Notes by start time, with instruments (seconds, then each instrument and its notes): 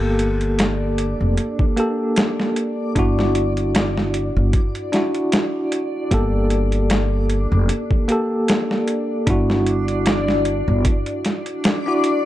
Already playing: upright bass G1, tine electric piano A#3 G4 A4, synth texture D4 D5
0.19 closed hi-hat
0.41 closed hi-hat
0.59 snare, closed hi-hat
0.98 closed hi-hat
1.21 upright bass F1
1.37 closed hi-hat
1.59 kick
1.76 tine electric piano A#3 G4 A4, closed hi-hat
2.16 snare, closed hi-hat
2.40 snare
2.56 closed hi-hat
2.95 upright bass G1, tine electric piano D4 E4 F#4, kick, closed hi-hat
3.19 snare
3.35 closed hi-hat
3.57 closed hi-hat
3.75 snare, closed hi-hat
3.97 snare
4.14 closed hi-hat
4.37 upright bass G1
4.53 kick, closed hi-hat
4.75 closed hi-hat
4.93 tine electric piano D4 E4 F#4, snare, closed hi-hat
5.15 closed hi-hat
5.32 snare, closed hi-hat
5.72 closed hi-hat
6.11 upright bass G1, tine electric piano A#3 G4 A4, kick, closed hi-hat
6.50 closed hi-hat
6.72 closed hi-hat
6.90 snare, closed hi-hat
7.30 closed hi-hat
7.52 upright bass F1
7.69 closed hi-hat
7.91 kick
8.08 tine electric piano A#3 G4 A4, closed hi-hat
8.48 snare, closed hi-hat
8.71 snare
8.88 closed hi-hat
9.27 upright bass G1, tine electric piano D4 E4 F#4, kick, closed hi-hat
9.50 snare
9.66 closed hi-hat
9.88 closed hi-hat
10.06 snare, closed hi-hat
10.28 snare
10.45 closed hi-hat
10.68 upright bass G1
10.85 kick, closed hi-hat
11.06 closed hi-hat
11.25 snare, closed hi-hat
11.46 closed hi-hat
11.64 snare, closed hi-hat
11.86 tine electric piano D4 E4 F#4
12.04 closed hi-hat